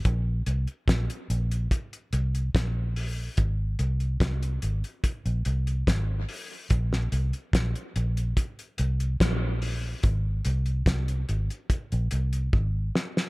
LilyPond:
<<
  \new Staff \with { instrumentName = "Fingered electric bass" } { \clef bass \time 4/4 \key aes \mixolydian \tempo 4 = 72 bes,,8 c,16 r16 bes,,16 r16 bes,,8 r8 c,8 bes,,4 | aes,,8 c,8 c,8 aes,,16 r8 bes,,16 c,8 aes,,8 r8 | bes,,8 c,16 r16 bes,,16 r16 bes,,8 r8 c,8 bes,,4 | aes,,8 c,8 c,8 aes,,16 r8 bes,,16 c,8 aes,,8 r8 | }
  \new DrumStaff \with { instrumentName = "Drums" } \drummode { \time 4/4 <hh bd>8 hh16 hh16 <hh bd sn>16 hh16 hh16 hh16 <hh bd>16 hh16 hh16 hh16 <hh bd sn>8 hho8 | <hh bd>8 hh16 hh16 <hh bd sn>16 hh16 hh16 hh16 <hh bd>16 hh16 hh16 hh16 <hh bd sn>8 hho8 | <hh bd>16 sn16 hh16 hh16 <hh bd sn>16 hh16 hh16 hh16 <hh bd>16 hh16 hh16 hh16 <hh bd sn>8 hho8 | <hh bd>8 hh16 hh16 <hh bd sn>16 hh16 hh16 hh16 <hh bd>16 hh16 hh16 hh16 bd8 sn16 sn16 | }
>>